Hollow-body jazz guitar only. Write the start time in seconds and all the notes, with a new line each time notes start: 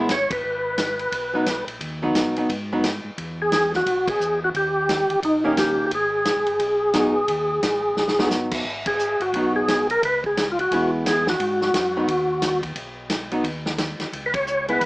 1.33 F#3 B3 D#4
2.02 F#3 B3 D#4
2.37 F#3 B3 D#4
2.73 F#3 B3 D#4
5.44 D#3 A#3 C#4 G4
6.94 F#3 B3 D#4
8.19 F#3 B3 D#4
9.35 F#3 B3 D#4
10.72 G#3 B3 E4
11.97 F#3 B3 D#4
13.32 F#3 B3 D#4
14.68 G#3 B3 E4